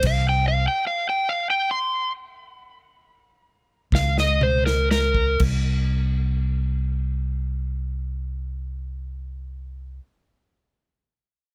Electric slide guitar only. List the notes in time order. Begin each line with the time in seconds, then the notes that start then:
0.07 F5
0.29 G5
0.48 F5
0.68 G5
0.87 F5
1.09 G5
1.29 F5
1.50 G5
1.71 C6
3.95 F5
4.20 D#5
4.43 C5
4.66 A#4
4.91 A#4